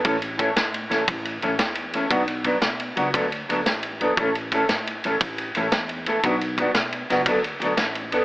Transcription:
<<
  \new Staff \with { instrumentName = "Clean electric guitar" } { \time 12/8 \key a \major \tempo 4. = 116 <e a cis' a'>8 r8 <e a cis' a'>8 r4 <e a cis' a'>8 r4 <e a cis' a'>8 r4 <e a cis' a'>8 | <fis b d' fis'>8 r8 <fis b d'>8 r4 <fis b d' fis'>8 <fis b d' a'>8 r8 <fis b d' a'>8 r4 <fis b d' a'>8 | <e a cis' a'>8 r8 <e a cis' a'>8 r4 <e a cis' a'>8 r4 <e a cis' a'>8 r4 <e a a'>8 | <fis b d' fis'>8 r8 <fis b d' fis'>8 r4 <fis b d' fis'>8 <fis b d' a'>8 r8 <fis b d' a'>8 r4 <b d' a'>8 | }
  \new Staff \with { instrumentName = "Upright bass" } { \clef bass \time 12/8 \key a \major a,,4. a,4 a,,8 a,,4 a,,8 e,4. | b,,4. b,4 cis,8 d,4 d,8 a,,4. | a,,4. a,4 a,,8 a,,4 a,,8 e,4. | b,,4. b,4 cis,8 d,4 d,8 a,,4. | }
  \new DrumStaff \with { instrumentName = "Drums" } \drummode { \time 12/8 <bd cymr>8 cymr8 <bd cymr>8 <cymr sn>8 cymr8 <cymr sn>8 <bd cymr>8 cymr8 cymr8 <cymr sn>8 cymr8 cymr8 | <bd cymr>8 cymr8 <bd cymr>8 <cymr sn>8 cymr8 cymr8 <bd cymr>8 cymr8 cymr8 <cymr sn>8 cymr8 cymr8 | <bd cymr>8 cymr8 <bd cymr>8 <cymr sn>8 cymr8 cymr8 <bd cymr>8 cymr8 cymr8 <cymr sn>8 cymr8 cymr8 | <bd cymr>8 cymr8 <bd cymr>8 <cymr sn>8 cymr8 <cymr sn>8 <bd cymr>8 cymr8 cymr8 <cymr sn>8 cymr8 cymr8 | }
>>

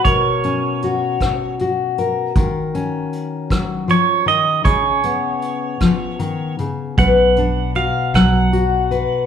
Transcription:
<<
  \new Staff \with { instrumentName = "Pedal steel guitar" } { \time 6/8 \key fis \major \tempo 4. = 52 cis''2 r4 | r2 cis''8 dis''8 | cis''2~ cis''8 r8 | fis''4 eis''8 fis''4. | }
  \new Staff \with { instrumentName = "Steel-string acoustic guitar" } { \time 6/8 \key fis \major << { ais'8 cis'8 fis'4 fis'8 ais'8 | ais'8 cis'2~ cis'8 | gis'8 b2~ b8 | b'8 d'8 fis'4 fis'8 b'8 | } \\ { b,4. b,4. | dis4. fis8 eis8 dis8 | cis4. eis8 dis8 cis8 | b,4. fis4. | } >> }
  \new Staff \with { instrumentName = "Fingered electric bass" } { \clef bass \time 6/8 \key fis \major r2. | r2. | r2. | b,,4. b,,4. | }
  \new DrumStaff \with { instrumentName = "Drums" } \drummode { \time 6/8 <hh bd>8 hh8 hh8 <hh bd ss>8 hh8 hh8 | <hh bd>8 hh8 hh8 <hh bd ss>8 hh8 hh8 | <hh bd>8 hh8 hh8 <hh bd ss>8 hh8 hh8 | <hh bd>8 hh8 hh8 <hh bd ss>8 hh8 hh8 | }
>>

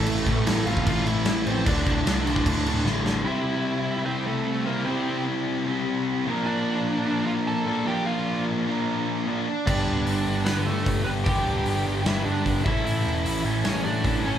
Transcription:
<<
  \new Staff \with { instrumentName = "Lead electric guitar" } { \time 4/4 \key c \mixolydian \tempo 4 = 150 <a a'>4. <f' f''>8 <f' f''>8 <e' e''>4 <c' c''>8 | <d' d''>2. r4 | <e' e''>2 <c' c''>8 <a a'>4 <bes bes'>8 | <c' c''>4 r2. |
<d' d''>2 <f' f''>8 <a' a''>4 <g' g''>8 | <f' f''>4 r2. | <d' d''>2 <b b'>8 <a a'>4 <b b'>8 | <g' g''>2 <e' e''>8 <d' d''>4 <e' e''>8 |
<e' e''>4. r8 <cis' cis''>8 <d' d''>4 <cis' cis''>8 | }
  \new Staff \with { instrumentName = "Distorted electric guitar" } { \time 4/4 \key c \mixolydian <a, e a c' e' a'>4. <a, e a c' e' a'>2 r8 | <d, a, d a f'>2 <d, a, d a f'>2 | <c g c' e' g' c''>2 <c g c' e' g' c''>2 | <c g c' e' g' c''>2 <c g c' e' g' c''>4. <bes, f bes d' f' bes'>8~ |
<bes, f bes d' f' bes'>4. <bes, f bes d' f' bes'>2 <bes, f bes d' f' bes'>8~ | <bes, f bes d' f' bes'>4. <bes, f bes d' f' bes'>2 r8 | <g, d g b d' g'>2 <g, d g b d' g'>2 | <g, d g b d' g'>2 <g, d g b d' g'>4. <a, e a cis' e' a'>8~ |
<a, e a cis' e' a'>4. <a, e a cis' e' a'>2 <a, e a cis' e' a'>8 | }
  \new Staff \with { instrumentName = "Overdriven electric guitar" } { \clef bass \time 4/4 \key c \mixolydian <a, e a>8 <a, e a>8 <a, e a>8 <a, e a>8 <a, e a>8 <a, e a>8 <a, e a>8 <a, e a>8 | <d, a, d>8 <d, a, d>8 <d, a, d>8 <d, a, d>8 <d, a, d>8 <d, a, d>8 <d, a, d>8 <d, a, d>8 | <c g c' e' g' c''>2 <c g c' e' g' c''>2 | <c g c' e' g' c''>2 <c g c' e' g' c''>4. <bes, f bes d' f' bes'>8~ |
<bes, f bes d' f' bes'>4. <bes, f bes d' f' bes'>2 <bes, f bes d' f' bes'>8~ | <bes, f bes d' f' bes'>4. <bes, f bes d' f' bes'>2 r8 | <g, d g b d' g'>2 <g, d g b d' g'>2 | <g, d g b d' g'>2 <g, d g b d' g'>4. <a, e a cis' e' a'>8~ |
<a, e a cis' e' a'>4. <a, e a cis' e' a'>2 <a, e a cis' e' a'>8 | }
  \new Staff \with { instrumentName = "Overdriven electric guitar" } { \clef bass \time 4/4 \key c \mixolydian <a, e a>8 <a, e a>8 <a, e a>8 <a, e a>8 <a, e a>8 <a, e a>8 <a, e a>8 <a, e a>8 | <d, a, d>8 <d, a, d>8 <d, a, d>8 <d, a, d>8 <d, a, d>8 <d, a, d>8 <d, a, d>8 <d, a, d>8 | <c g c' e' g' c''>2.~ <c g c' e' g' c''>8 <c g c' e' g' c''>8 | <c g c' e' g' c''>2.~ <c g c' e' g' c''>8 <bes, f bes d' f' bes'>8~ |
<bes, f bes d' f' bes'>2. <bes, f bes d' f' bes'>8 <bes, f bes d' f' bes'>8~ | <bes, f bes d' f' bes'>2. <bes, f bes d' f' bes'>8 r8 | <g, d g b d' g'>2.~ <g, d g b d' g'>8 <g, d g b d' g'>8 | <g, d g b d' g'>2.~ <g, d g b d' g'>8 <a, e a cis' e' a'>8~ |
<a, e a cis' e' a'>2. <a, e a cis' e' a'>8 <a, e a cis' e' a'>8 | }
  \new Staff \with { instrumentName = "Picked electric bass" } { \clef bass \time 4/4 \key c \mixolydian a,,8 a,,8 a,,8 a,,8 a,,8 a,,8 a,,8 a,,8 | d,,8 d,,8 c,4 d,8 d,,8 a,,4 | r1 | r1 |
r1 | r1 | g,,8 d,,8 g,,8 g,,8 g,,8 g,8 g,,8 g,,8 | g,,8 d,,8 g,,8 g,,8 g,,8 g,8 g,,8 a,,8 |
a,,8 e,,8 a,,8 a,,8 a,,8 a,8 a,,8 a,,8 | }
  \new DrumStaff \with { instrumentName = "Drums" } \drummode { \time 4/4 cymc8 <cymc bd>8 <cymc sn>8 cymc16 bd16 <cymc bd>8 cymc8 <cymc sn>8 cymc8 | <cymc bd>8 <cymc bd>8 <cymc sn>8 cymc16 bd16 <cymc bd>8 cymc8 sn8 sn8 | r4 r4 r4 r4 | r4 r4 r4 r4 |
r4 r4 r4 r4 | r4 r4 r4 r4 | <cymc bd>4 hho4 <hho sn>4 <hho bd>4 | <hho bd>4 hho4 <hho sn>4 <hho bd>8 bd8 |
hho4 hho4 <hho sn>4 <hho bd>4 | }
>>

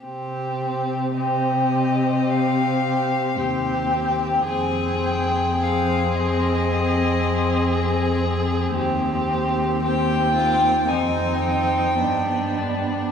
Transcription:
<<
  \new Staff \with { instrumentName = "Violin" } { \time 4/4 \key c \minor \tempo 4 = 55 r4 ees''4 f''4 g''4 | aes''8 g''8 f''8 ees''2 r8 | r4 g''4 aes''8 g''4 d''8 | }
  \new Staff \with { instrumentName = "Violin" } { \time 4/4 \key c \minor g'4 g'2 g'4 | aes'4 aes'2. | g'4 g'8 f'8 ees'4 d'4 | }
  \new Staff \with { instrumentName = "Viola" } { \time 4/4 \key c \minor c'4 c'2 c'4 | c'4 c'2. | c'4 c'4 c'4 b4 | }
  \new Staff \with { instrumentName = "Cello" } { \clef bass \time 4/4 \key c \minor c2. ees,4 | f,1 | ees,2 f,4 g,4 | }
>>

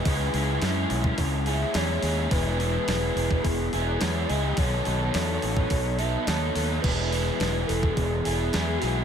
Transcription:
<<
  \new Staff \with { instrumentName = "Soft synth lead" } { \time 4/4 \key e \major \tempo 4 = 106 b'4 r4. e''8 cis''4 | b'8 b'4. gis'4 cis''8 dis''8 | cis''2~ cis''8 e''8 cis''4 | b'8 b'4 a'8 gis'8 gis'4 fis'8 | }
  \new Staff \with { instrumentName = "Overdriven electric guitar" } { \time 4/4 \key e \major <cis gis cis' e' gis'>8 <cis' e' gis'>8 <gis cis' e' gis'>4. <cis' e' gis'>8 <gis cis' e' gis'>8 <cis' e' gis'>8 | <e gis b e' gis'>8 <b e' gis'>8 <gis b e' gis'>4. <b e' gis'>8 <gis b e' gis'>8 <b e' gis'>8 | <b, dis fis b dis' a'>8 <fis b dis' a'>8 <fis b dis' a'>4. <fis b dis' a'>8 <fis b dis' a'>8 <fis b dis' a'>8 | <e gis b e' gis'>8 <b e' gis'>8 <gis b e' gis'>4. <b e' gis'>8 <gis b e' gis'>8 <b e' gis'>8 | }
  \new Staff \with { instrumentName = "Fingered electric bass" } { \clef bass \time 4/4 \key e \major cis,8 cis,8 fis,8 b,,8 cis,4 e,8 dis,8 | e,,4 e,,8 e,,8 e,,8 e,,8 e,8 cis,8 | b,,8 b,,8 e,8 a,,8 b,,4 dis,8 dis,8 | e,,4 e,,8 e,,8 e,,8 e,,8 e,8 b,,8 | }
  \new DrumStaff \with { instrumentName = "Drums" } \drummode { \time 4/4 <hho bd>8 hho8 <hho sn>8 hho16 bd16 <hho bd>8 hho8 <hho sn>8 hho8 | <hho bd>8 hho8 <hho sn>8 hho16 bd16 <hho bd>8 hho8 <hho sn>8 hho8 | <hho bd>8 hho8 <hho sn>8 hho16 bd16 <hho bd>8 hho8 <hho sn>8 hho8 | <cymc bd>8 hho8 <hho sn>8 hho16 bd16 <hho bd>8 hho8 <hho sn>8 hho8 | }
>>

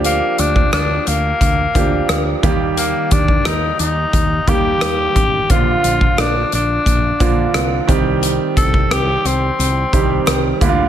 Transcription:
<<
  \new Staff \with { instrumentName = "Tenor saxophone" } { \time 4/4 \key c \dorian \tempo 4 = 88 bes8 d'8 d'8 bes2 r8 | bes8 d'8 ees'8 ees'4 g'4. | f'4 d'8 d'2 r8 | r8 a'8 g'8 c'2 r8 | }
  \new Staff \with { instrumentName = "Grand piano" } { \time 4/4 \key c \dorian <f bes d' g'>4. r4 <f bes d' g'>4 <ees g bes g'>8~ | <ees g bes g'>4. r4 <ees g bes g'>4. | <d f bes f'>2 r8 <d f bes f'>4 <ees g c' g'>8~ | <ees g c' g'>4. r4 <ees g c' g'>4 <d g bes e' f'>8 | }
  \new Staff \with { instrumentName = "Fretless electric bass" } { \clef bass \time 4/4 \key c \dorian d,8 d,8 d,8 d,8 d,8 d,8 d,8 ees,8~ | ees,8 ees,8 ees,8 ees,8 ees,8 ees,8 ees,8 a,,8 | bes,,8 bes,,8 bes,,8 bes,,8 bes,,8 bes,,8 c,8 c,8~ | c,8 c,8 c,8 c,8 c,8 c,8 c,8 d,8 | }
  \new DrumStaff \with { instrumentName = "Drums" } \drummode { \time 4/4 hh8 hh16 bd16 <hh ss>8 hh8 <hh bd>8 <hh bd>8 <hh ss>8 <hh bd>8 | hh8 <hh bd>16 bd16 <hh ss>8 hh8 <hh bd>8 <hh bd>8 <hh ss>8 <hh bd>8 | <hh bd>8 hh16 bd16 <hh ss>8 hh8 <hh bd>8 <hh bd>8 <hh ss>8 <hh bd>8 | hh8 <hh bd>16 bd16 <hh ss>8 hh8 hh8 <hh bd>8 <hh ss>8 <hh bd>8 | }
>>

